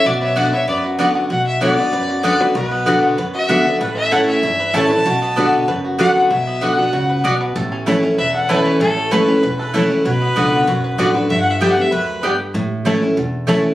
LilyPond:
<<
  \new Staff \with { instrumentName = "Fiddle" } { \time 4/4 \key b \minor \tempo 4 = 192 d''8 e''8 fis''8 e''8 d''8 r4. | r1 | r1 | r1 |
r1 | r1 | r1 | r1 |
r1 | r1 | r1 | }
  \new Staff \with { instrumentName = "Fiddle" } { \time 4/4 \key b \minor b'8 cis''8 d''8 cis''8 b'8 r4. | fis''8 e''8 d''2 d''8 b'8 | b'2 r8 e''4. | b'8 e''8 fis''8 e''4. a''4~ |
a''2 r4 fis''8 fis''8 | e''4 fis''2 r4 | r2 e''8 fis''8 b'4 | a'4 b'4. b'4. |
b'2. r4 | \tuplet 3/2 { e''8 fis''8 e''8 e''8 fis''8 e''8 } b'4 r4 | r1 | }
  \new Staff \with { instrumentName = "Mandolin" } { \time 4/4 \key b \minor r4 <b fis' d'' fis''>8 r4. <b fis' d'' fis''>8 r8 | r4 <b fis' d'' fis''>8 r4. <b fis' d'' fis''>8 r8 | r4 <b fis' d'' fis''>8 r4. <b fis' d'' fis''>8 r8 | r4 <a e' cis'' a''>8 r4. <a e' cis'' a''>8 r8 |
r4 <b fis' d'' fis''>8 r4. <b fis' d'' fis''>8 r8 | r4 <b fis' d'' fis''>8 r4. <b fis' d'' fis''>8 r8 | r4 <a e' cis'' a''>8 r4. <a e' cis'' a''>8 r8 | r4 <a e' cis'' a''>8 r4. <a e' cis'' a''>8 r8 |
r4 <b fis' d'' fis''>8 r4. <b fis' d'' fis''>8 r8 | r4 <b g' d'' g''>8 r4. <b g' d'' g''>8 r8 | r4 <a e' cis'' a''>8 r4. <a e' cis'' a''>8 r8 | }
  \new Staff \with { instrumentName = "Five-string banjo" } { \time 4/4 \key b \minor fis'8 b'8 fis'8 b'8 b8 fis'8 b8 fis'8 | fis'4 fis'8 b8 b'8 fis'8 b8 b'8 | fis'8 b8 b'8 b8 b'8 fis'8 fis'8 b8 | a8 cis'8 a'8 cis'8 e'8 b'8 a'8 b'8 |
fis'8 b8 b'8 b8 b'8 fis'8 fis'8 b8 | fis8 b8 fis'8 b8 fis'8 b'8 fis'8 b'8 | a'8 cis'8 b'8 cis'8 b'8 a'8 e'8 cis'8 | a'8 cis'8 b'8 cis'8 b'8 a'8 e'8 cis'8 |
fis8 b8 fis'8 b8 fis'8 b'8 fis'8 b'8 | r4 <b g'>8 r4. <b g'>8 r8 | r4 <cis' e' a'>8 r4. <cis' e' a'>8 r8 | }
  \new Staff \with { instrumentName = "Steel-string acoustic guitar" } { \time 4/4 \key b \minor << { r4 <d b d' fis'>8 <d' fis'>8 r4 <d b d' fis'>4 | r4 <d b d' fis'>8 <d' fis'>8 r4 <d b d' fis'>8 <d' fis'>8 | r4 <d b d' fis'>4 r4 <d b d' fis'>8 <d' fis'>8 | r4 <e a cis' e'>4 r4 <e a cis' e'>8 <cis' e'>8 |
r4 <d b d' fis'>4 r4 <d b d' fis'>4 | r4 <d b d' fis'>8 <d' fis'>8 r2 | r4 <e a cis' e'>8 <cis' e'>8 r4 <e a cis' e'>4 | r4 <e a cis' e'>8 <cis' e'>8 r4 <e a cis' e'>8 <cis' e'>8 |
r4 <d b d' fis'>4 r4 <d b d' fis'>8 <d' fis'>8 | r4 <d g b g'>8 <b g'>8 r2 | r4 <e a cis' e'>8 <cis' e'>8 r4 <e a cis' e'>4 | } \\ { b,2 fis,2 | b,2 fis,2 | b,2 fis,2 | a,2 e,2 |
b,2 fis,2 | b,2 cis4 b,4 | a,2 e,2 | a,2 e,2 |
b,2 fis,2 | g,2 fis,4 g,4 | a,2 e,2 | } >> }
  \new Staff \with { instrumentName = "Upright bass" } { \clef bass \time 4/4 \key b \minor b,,2 fis,2 | b,,2 fis,2 | b,,2 fis,2 | a,,2 g,,4 a,,4 |
b,,2 fis,,2 | b,,2 cis,4 b,,4 | a,,2 e,,2 | a,,2 e,,2 |
b,,4 cis,4 b,,4 a,,4 | g,,2 d,2 | a,,2 e,,2 | }
>>